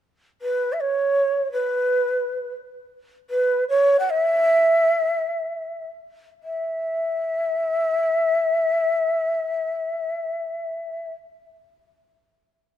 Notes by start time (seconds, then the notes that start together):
0.41 B4
0.72 E5
0.80 C#5
1.52 B4
3.30 B4
3.69 C#5
3.99 F#5
4.10 E5
6.43 E5